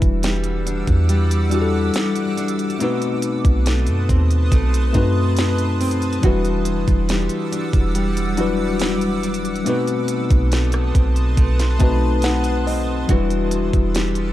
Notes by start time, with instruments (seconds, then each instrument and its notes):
Already playing: nylon-string guitar E3 F#4, tine electric piano G3 D4 E4 F#4 B4, ambient pad G3 F#5 D6 E6
0.02 808-style bass E1, kick, closed hi-hat
0.23 nylon-string guitar G3, snare, closed hi-hat
0.44 closed hi-hat
0.66 nylon-string guitar D4, closed hi-hat
0.87 808-style bass E2, kick, closed hi-hat
1.09 nylon-string guitar G3, closed hi-hat
1.31 closed hi-hat
1.50 tine electric piano G3 D4 E4 F#4, nylon-string guitar F#4, closed hi-hat
1.55 tine electric piano G4
1.62 tine electric piano A4
1.94 snare, closed hi-hat
2.16 closed hi-hat
2.37 nylon-string guitar D4, closed hi-hat
2.48 closed hi-hat
2.59 closed hi-hat
2.70 closed hi-hat
2.79 nylon-string guitar B2 D#4, tine electric piano A3 C4 D#4 F#4, ambient pad B4 A5 C6 D#6, closed hi-hat
2.84 tine electric piano B4
3.02 closed hi-hat
3.22 closed hi-hat
3.45 808-style bass B1, kick, closed hi-hat
3.66 nylon-string guitar A3, snare, closed hi-hat
3.87 808-style bass F#2, closed hi-hat
4.09 808-style bass D#2, nylon-string guitar C4, kick, closed hi-hat
4.31 closed hi-hat
4.52 808-style bass B1, nylon-string guitar A3, kick, closed hi-hat
4.74 closed hi-hat
4.93 808-style bass F#2, tine electric piano A3 C4 D#4 F#4, nylon-string guitar D#4, kick, closed hi-hat
4.98 tine electric piano B4
5.37 snare, closed hi-hat
5.58 closed hi-hat
5.81 nylon-string guitar C4, closed hi-hat, open hi-hat
5.91 closed hi-hat
6.02 closed hi-hat
6.13 closed hi-hat
6.21 808-style bass E1, nylon-string guitar E3 F#4, tine electric piano F#3 D4 E4 F#4, ambient pad G3 F#5 D6 E6, kick, closed hi-hat
6.26 tine electric piano G3 B4
6.45 closed hi-hat
6.65 closed hi-hat
6.88 808-style bass E1, kick, closed hi-hat
7.09 nylon-string guitar G3, snare, closed hi-hat
7.29 closed hi-hat
7.52 nylon-string guitar D4, closed hi-hat
7.73 808-style bass E1, kick, closed hi-hat
7.95 nylon-string guitar G3, closed hi-hat
8.17 closed hi-hat
8.36 tine electric piano F#3 D4 E4 F#4, nylon-string guitar F#4, closed hi-hat
8.41 tine electric piano G3 B4
8.80 snare, closed hi-hat
9.01 closed hi-hat
9.23 nylon-string guitar D4, closed hi-hat
9.34 closed hi-hat
9.45 closed hi-hat
9.56 closed hi-hat
9.64 nylon-string guitar B2 D#4, tine electric piano A3 C4 D#4 F#4, ambient pad B4 A5 C6 D#6, closed hi-hat
9.69 tine electric piano B4
9.87 closed hi-hat
10.08 closed hi-hat
10.30 808-style bass B1, kick, closed hi-hat
10.52 nylon-string guitar A3, snare, closed hi-hat
10.72 cross-stick, closed hi-hat
10.95 808-style bass B1, nylon-string guitar C4, kick, closed hi-hat
11.16 closed hi-hat
11.37 808-style bass B1, nylon-string guitar A3, kick, closed hi-hat
11.59 snare, closed hi-hat
11.79 808-style bass B1, tine electric piano A3 C4 D#4 F#4 A5, nylon-string guitar D#4, kick, closed hi-hat
11.84 tine electric piano B4
12.22 tine electric piano F#5, snare, closed hi-hat
12.44 closed hi-hat
12.66 nylon-string guitar C4, tine electric piano D#5, open hi-hat
13.07 808-style bass E1, nylon-string guitar E3 F#4, tine electric piano F#3 D4 E4 F#4, ambient pad G3 F#5 D6 E6, kick, closed hi-hat
13.12 tine electric piano G3 B4
13.30 closed hi-hat
13.51 closed hi-hat
13.73 808-style bass E1, kick, closed hi-hat
13.95 nylon-string guitar G3, snare, closed hi-hat
14.15 closed hi-hat